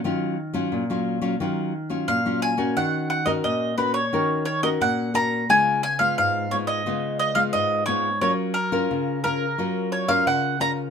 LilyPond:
<<
  \new Staff \with { instrumentName = "Mandolin" } { \time 4/4 \key ees \minor \tempo 4 = 88 r2. f''8 aes''8 | ges''8 ges''16 ees''16 ees''8 ces''16 des''8. des''16 ees''16 ges''8 bes''8 | aes''8 aes''16 f''16 f''8 des''16 ees''8. ees''16 f''16 ees''8 des''8 | des''8 bes'4 bes'4 des''16 f''16 ges''8 bes''8 | }
  \new Staff \with { instrumentName = "Nylon-string guitar" } { \time 4/4 \key ees \minor << { <ges des' f'>8 r16 <ges des' f'>8 <ges des' f'>8 <ges des' f'>16 <ges des' f'>8 r16 <ges des' f'>8 <ges des' f'>8 <des' ges' bes'>16~ | <des' ges' bes'>8. <des' ges' bes'>8. <des' ges' bes'>16 r16 <des' ges' bes'>8 r16 <des' ges' bes'>8. <des' ges' bes'>8 | <aes ces' f'>8 r16 <aes ces' f'>8. <aes ces' f'>8 <aes ces' f'>8. <aes ces' f'>8. <aes ces' f'>16 r16 | <des' f' bes'>8 r16 <des' f' bes'>8. <des' f' bes'>16 r16 <des' f' bes'>8. <des' f' bes'>8. <des' f' bes'>8 | } \\ { ees4 bes,4 ees4 bes,4 | ees4 bes,4 ees4 bes,4 | des4 aes,4 des4 aes,4 | ges4 des4 ges4 des4 | } >> }
>>